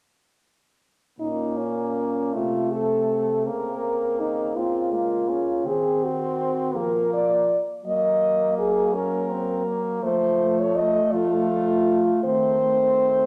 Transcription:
1.19 2.30 A#2 soft
1.19 2.36 A#3 soft
1.19 2.35 C#4 soft
1.19 1.59 D#4 soft
1.57 2.36 C#4 soft
2.34 3.48 C3 soft
2.34 3.48 A3 soft
2.34 4.55 C4 soft
2.34 2.73 F4 soft
2.72 3.45 A4 soft
3.46 5.65 C#3 soft
3.46 4.59 A#3 soft
3.46 4.21 A#4 soft
4.20 4.57 D#4 soft
4.55 4.94 A#3 soft
4.55 4.93 C4 soft
4.55 5.68 F4 soft
4.93 5.30 G#3 soft
4.93 5.30 A#3 soft
5.29 5.65 A#3 soft
5.29 5.67 C#4 soft
5.65 6.77 D#3 soft
5.65 6.76 C4 soft
5.65 6.77 C4 soft
5.65 6.05 G#4 soft
6.03 6.78 F#4 soft
6.74 7.58 F3 soft
6.74 7.57 A#3 soft
6.74 7.58 A#3 soft
6.74 7.12 A#4 medium
7.13 7.59 D5 medium
7.85 10.00 F#3 soft
7.85 8.95 A#3 soft
7.85 8.90 A#3 soft
7.85 8.54 D#5 medium
8.58 8.96 G#4 medium
8.94 10.01 A#3 soft
8.94 9.32 C#4 medium
8.94 10.02 A#4 medium
9.30 9.66 C4 soft
9.67 10.05 A#3 soft
10.03 11.00 F3 soft
10.03 12.23 A3 soft
10.03 10.60 C5 medium
10.41 11.48 A3 soft
10.59 10.78 C#5 medium
10.76 11.13 D#5 medium
11.12 12.11 F3 soft
11.12 12.23 F4 medium
11.51 12.24 A3 soft
12.23 13.23 D#3 soft
12.23 12.61 A3 soft
12.23 13.26 C4 medium
12.23 13.26 C5 medium
12.61 13.26 A3 soft

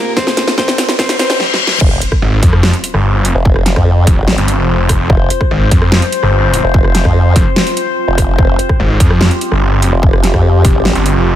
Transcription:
0.00 1.36 F2 medium
0.00 1.36 C3 medium
0.00 0.15 A#3 medium
0.00 1.36 C4 medium
0.00 1.36 F4 medium
0.00 0.15 A#4 medium
0.00 1.36 C5 medium
0.00 riser medium
0.17 0.56 C4 medium
0.17 0.56 C5 loud
0.17 kick loud
0.17 snare medium
0.27 snare medium
0.37 snare medium
0.37 closed hi-hat medium
0.47 snare medium
0.58 0.97 C4 medium
0.58 0.97 C5 loud
0.58 kick loud
0.58 snare loud
0.68 snare medium
0.78 snare loud
0.78 closed hi-hat medium
0.89 snare medium
0.99 1.18 C4 medium
0.99 1.18 C5 loud
0.99 kick loud
0.99 snare loud
0.99 reverse cymbal medium
1.09 snare medium
1.09 closed hi-hat soft
1.19 1.38 C4 medium
1.19 1.38 C5 loud
1.19 snare loud
1.19 closed hi-hat medium
1.30 snare medium
1.40 snare medium
1.54 snare medium
1.67 snare loud
1.81 2.00 F1 loud
1.81 11.36 C4 medium
1.81 11.36 F4 medium
1.81 8.37 C5 medium
1.81 kick loud
1.81 crash loud
1.81 sub drop medium
2.02 closed hi-hat medium
2.12 kick medium
2.12 cross-stick medium
2.22 2.41 G#1 loud
2.43 2.72 F2 loud
2.43 kick loud
2.43 closed hi-hat medium
2.53 cross-stick medium
2.63 snare loud
2.74 closed hi-hat soft
2.84 closed hi-hat medium
2.94 3.33 G1 loud
2.94 cross-stick medium
3.25 closed hi-hat medium
3.35 3.75 F1 loud
3.45 kick loud
3.56 cross-stick medium
3.66 snare medium
3.66 closed hi-hat medium
3.76 4.05 F2 loud
3.76 kick medium
3.76 cross-stick medium
4.07 4.16 F1 loud
4.07 kick loud
4.07 closed hi-hat medium
4.17 4.36 G#1 medium
4.28 snare loud
4.38 4.57 G1 loud
4.38 closed hi-hat soft
4.48 closed hi-hat medium
4.58 5.08 F1 loud
4.89 kick medium
4.89 cross-stick medium
4.89 closed hi-hat medium
5.10 5.29 F1 loud
5.10 kick loud
5.30 closed hi-hat medium
5.41 kick medium
5.41 cross-stick medium
5.51 5.70 G#1 loud
5.71 6.01 F2 loud
5.71 kick loud
5.71 closed hi-hat medium
5.82 cross-stick medium
5.92 snare loud
6.02 closed hi-hat soft
6.12 closed hi-hat medium
6.23 6.62 G1 loud
6.23 cross-stick medium
6.54 closed hi-hat medium
6.64 7.03 F1 loud
6.74 kick loud
6.84 cross-stick medium
6.95 snare medium
6.95 closed hi-hat medium
7.05 7.34 F2 medium
7.05 kick medium
7.05 cross-stick medium
7.36 7.44 F1 loud
7.36 kick loud
7.36 closed hi-hat medium
7.56 snare loud
7.67 closed hi-hat soft
7.77 closed hi-hat medium
8.08 8.37 F1 loud
8.18 kick medium
8.18 cross-stick medium
8.18 closed hi-hat medium
8.39 8.57 F1 loud
8.39 11.36 G4 loud
8.39 kick loud
8.59 closed hi-hat medium
8.69 kick medium
8.69 cross-stick medium
8.80 8.99 G#1 loud
9.00 9.29 F2 loud
9.00 kick loud
9.00 closed hi-hat medium
9.11 cross-stick medium
9.21 snare loud
9.31 closed hi-hat soft
9.41 closed hi-hat medium
9.52 9.91 G1 loud
9.52 cross-stick medium
9.82 closed hi-hat medium
9.93 10.32 F1 loud
10.03 kick loud
10.13 cross-stick medium
10.24 snare medium
10.24 closed hi-hat medium
10.34 10.63 F2 medium
10.34 kick medium
10.34 cross-stick medium
10.65 10.73 F1 loud
10.65 kick loud
10.65 closed hi-hat medium
10.75 10.94 G#1 loud
10.85 snare loud
10.95 11.14 G1 loud
10.95 closed hi-hat soft
11.06 closed hi-hat medium
11.16 11.36 F1 loud

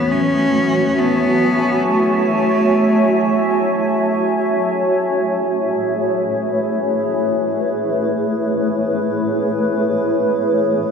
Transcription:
0.00 0.46 E3 medium
0.00 4.70 F#3 medium
0.00 0.12 B3 medium
0.00 4.70 C#4 medium
0.00 5.61 F#4 medium
0.00 0.27 B4 medium
0.00 10.91 C#5 medium
0.00 7.07 E5 medium
0.00 6.09 G#5 medium
0.00 4.61 A5 medium
0.11 1.01 C#4 medium
0.99 1.89 B3 medium
1.90 3.66 A3 medium
4.64 10.91 A3 medium
4.81 10.91 E4 medium
4.90 10.91 G#4 medium
5.39 10.91 B4 medium

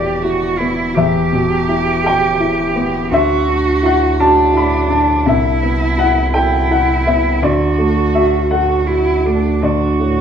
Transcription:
0.00 3.13 E1 medium
0.00 0.91 E2 medium
0.00 0.99 B2 soft
0.00 0.24 E4 soft
0.00 0.24 G4 medium
0.00 0.45 G4 soft
0.00 0.98 C5 medium
0.00 0.92 D5 medium
0.22 0.82 E4 soft
0.22 0.59 F#4 medium
0.58 1.18 B3 soft
0.58 0.96 E4 medium
0.94 3.08 E2 medium
0.94 3.11 G4 medium
0.94 2.01 E5 medium
1.32 1.90 B2 soft
1.69 2.26 E4 soft
2.04 2.62 G4 soft
2.04 3.09 G5 medium
2.40 2.97 E4 soft
2.76 3.12 B3 soft
3.11 5.22 D2 medium
3.11 5.27 D2 medium
3.11 4.21 F#4 medium
3.11 3.80 E5 medium
3.47 4.04 D4 soft
3.83 4.40 E4 soft
3.83 4.18 F#5 medium
4.19 5.27 D4 medium
4.19 4.76 F#4 soft
4.19 4.53 A5 medium
4.53 5.11 E4 soft
4.53 4.89 B5 medium
4.90 5.26 D4 soft
4.90 5.24 A5 medium
5.25 7.42 C2 medium
5.25 7.38 C2 medium
5.25 6.33 E4 medium
5.25 5.95 E5 medium
5.63 6.19 B3 soft
5.98 6.55 E4 soft
5.98 6.31 F#5 medium
6.33 7.44 E4 medium
6.33 6.91 A4 soft
6.33 6.67 G5 medium
6.71 7.28 E4 soft
6.71 7.04 F#5 medium
7.07 7.42 B3 soft
7.07 7.40 E5 medium
7.41 10.21 D2 medium
7.41 9.58 D2 medium
7.41 8.52 F#4 medium
7.41 8.11 D5 medium
7.78 8.36 A3 soft
8.15 8.73 F#4 soft
8.15 8.49 E5 medium
8.51 8.88 F#4 soft
8.51 9.10 A4 soft
8.51 9.58 F#5 medium
8.87 9.27 E4 medium
8.87 9.48 F#4 soft
9.25 9.85 A3 soft
9.25 9.63 D4 soft
9.62 10.21 D2 soft
9.62 10.21 F#4 soft
9.62 10.21 D5 medium
10.00 10.21 A2 soft

